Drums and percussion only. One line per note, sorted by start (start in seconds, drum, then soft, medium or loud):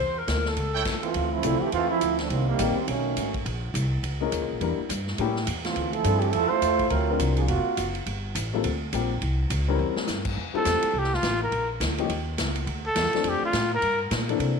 0.28 snare medium
0.28 hi-hat pedal medium
0.28 ride medium
0.45 snare soft
0.57 ride medium
0.85 kick medium
0.85 snare medium
0.85 hi-hat pedal medium
0.85 crash medium
0.85 ride medium
1.03 ride soft
1.14 ride medium
1.43 hi-hat pedal medium
1.43 ride medium
1.72 ride medium
2.01 hi-hat pedal medium
2.01 ride medium
2.19 snare soft
2.19 ride soft
2.30 ride medium
2.59 hi-hat pedal medium
2.59 ride medium
2.88 ride medium
3.17 hi-hat pedal medium
3.17 ride medium
3.34 kick medium
3.34 ride soft
3.46 ride medium
3.75 hi-hat pedal medium
3.75 ride medium
4.04 ride medium
4.32 hi-hat pedal medium
4.32 ride medium
4.61 ride medium
4.90 hi-hat pedal medium
4.90 ride medium
5.07 snare soft
5.18 ride medium
5.36 snare soft
5.47 hi-hat pedal medium
5.47 ride medium
5.65 snare soft
5.65 ride soft
5.76 ride medium
5.93 ride soft
6.04 hi-hat pedal medium
6.04 ride medium
6.22 ride soft
6.33 ride medium
6.62 hi-hat pedal medium
6.62 ride medium
6.79 kick medium
6.79 ride soft
6.90 ride medium
7.20 hi-hat pedal medium
7.20 ride medium
7.37 ride soft
7.48 ride medium
7.77 hi-hat pedal medium
7.77 ride medium
7.95 ride soft
8.06 ride medium
8.35 hi-hat pedal medium
8.35 ride medium
8.64 ride medium
8.93 hi-hat pedal medium
8.93 ride medium
9.22 ride medium
9.50 hi-hat pedal medium
9.50 ride medium
9.96 snare medium
10.07 snare medium
10.07 hi-hat pedal medium
10.25 kick medium
10.25 crash medium
10.65 snare medium
10.65 hi-hat pedal medium
10.65 ride medium
10.82 ride medium
11.04 snare soft
11.14 snare soft
11.23 snare medium
11.23 hi-hat pedal medium
11.23 ride medium
11.52 ride medium
11.81 snare medium
11.81 hi-hat pedal medium
11.81 ride medium
11.98 ride soft
12.10 ride medium
12.38 snare medium
12.38 hi-hat pedal medium
12.38 ride medium
12.55 ride soft
12.67 ride medium
12.96 snare medium
12.96 hi-hat pedal medium
12.96 ride medium
13.05 snare soft
13.13 snare soft
13.13 ride soft
13.24 ride medium
13.53 snare medium
13.53 hi-hat pedal medium
13.53 ride medium
13.82 ride medium
14.11 snare medium
14.11 hi-hat pedal medium
14.11 ride medium
14.29 ride soft
14.40 ride medium